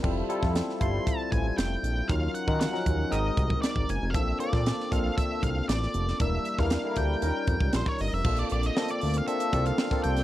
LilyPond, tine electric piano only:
\new Staff \with { instrumentName = "Tine electric piano" } { \time 4/4 \key bes \lydian \tempo 4 = 117 <g c' e' f' a'>8 <g c' e' f' a'>8. r16 <g c' e' f' c''>4.~ <g c' e' f' c''>16 r8. | <ges des' ees' f' bes'>8. <ges des' ees' f' bes'>8 <f ges des' ees' bes'>8. <gis bis dis' fis' ais'>4.~ <gis bis dis' fis' ais'>16 r16 | <bes c' d' f' a'>8 <bes c' d' f' a'>8. r16 <bes c' d' f' a'>4.~ <bes c' d' f' a'>16 r8. | <g bes d' e' bes'>8. <g bes d' e' bes'>8 <g bes d' e' a' bes'>8. <g des' ees' f' bes'>4.~ <g des' ees' f' bes'>16 r16 |
<bes c' d' f' a'>8. r16 <bes c' d' f' a'>8. r16 <bes c' d' f' a'>8 <bes c' d' f' a'>8. <bes c' d' f' a'>8. | }